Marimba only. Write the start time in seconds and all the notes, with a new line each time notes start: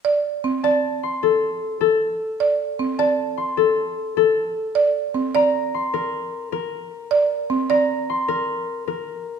0.05 D5
0.44 C4
0.64 D5
2.40 D5
2.79 C4
2.99 D5
4.75 D5
5.14 C4
5.35 D5
7.11 D5
7.50 C4
7.70 D5